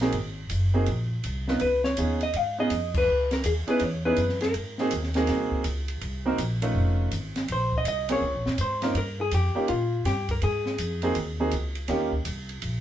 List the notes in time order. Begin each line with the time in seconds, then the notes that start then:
Already playing: A#1
0.01 A#3 C4 D#4 F#4 G#4, snare
0.12 G#1, ride
0.50 F#1, hi-hat pedal, ride
0.74 A#3 C4 D#4 F#4 G#4
0.86 A#1, ride
1.24 C2, hi-hat pedal, ride
1.48 B3 C#4 D#4 F4 B4, snare
1.60 C#2 B4, ride
1.84 C#5, snare
1.97 D#2 B3 C#4 D#4 F4 G#4, hi-hat pedal, ride
2.21 D#5, ride
2.34 G#2 F5, ride
2.58 B3 C#4 D#4 F4 G#4 D#5
2.70 F2, hi-hat pedal, ride
2.94 B4, kick, crash
3.08 C#2
3.31 A#4, snare, ride
3.44 D#2 G#4, hi-hat pedal, ride
3.67 B3 C#4 D#4 E4 G#4 B4, muted upright bass stroke, ride
3.80 E2 C#5, ride
4.05 B3 C#4 D#4 E4 G#4 B4
4.16 F#2, hi-hat pedal, ride
4.29 snare
4.41 A#4, snare, ride
4.54 G#2, ride
4.78 A#3 C4 D#4 F#4 G#4, snare
4.91 D#2, hi-hat pedal, ride
5.03 snare
5.14 A#3 C4 D#4 F#4 G#4, snare, ride
5.27 C2, snare, ride
5.52 muted upright bass stroke, kick
5.64 C#2, hi-hat pedal, ride
5.88 ride
6.01 C2, ride
6.25 A#3 C4 D#4 F#4 A#4
6.38 A#1, hi-hat pedal, ride
6.62 A3 C#4 D#4 F4 B4, ride
6.74 F1
7.11 G#1, hi-hat pedal, ride
7.36 snare, ride
7.48 A#1, ride
7.52 C5
7.72 kick
7.78 D#5
7.84 C2, hi-hat pedal, ride
7.88 D#5
8.09 A#3 C4 C#4 F4 G#4 C#5, ride
8.21 C#2
8.34 A#1
8.46 G#1, snare
8.58 G#2 C5, hi-hat pedal, ride
8.82 A#3 C#4 D#4 F4 A#4, snare, ride
8.94 G2 A#4, ride
9.21 G#4
9.31 F2 G4, hi-hat pedal, ride
9.55 A#3 C#4 D#4 F4 G4, muted upright bass stroke
9.68 A#2 F4, ride
10.05 G2 G4, snare, hi-hat pedal, ride
10.29 A#4, kick, ride
10.42 G#2 G#4, ride
10.66 snare
10.78 F2, hi-hat pedal, ride
11.02 A#3 C4 D#4 F#4 G#4, ride
11.15 D#2, ride
11.40 A#3 C4 D#4 F#4 G#4
11.51 C#2, hi-hat pedal, ride
11.75 ride
11.88 D#2 A#3 C#4 D#4 F4 G4, snare, ride
12.12 kick
12.25 C2, hi-hat pedal, ride
12.49 ride
12.62 A#1, ride